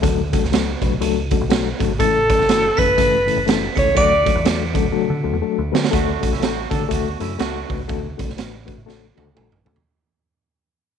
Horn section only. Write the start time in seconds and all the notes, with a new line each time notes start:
3.95 D3 A3 F#4
5.92 D3 A3 F#4
6.32 E3 C#4 E4
6.42 D3 A3 F#4
6.70 F#3 D4 A4
6.92 D3 A3 F#4
7.21 E3 C#4 E4
7.40 D3 A3 F#4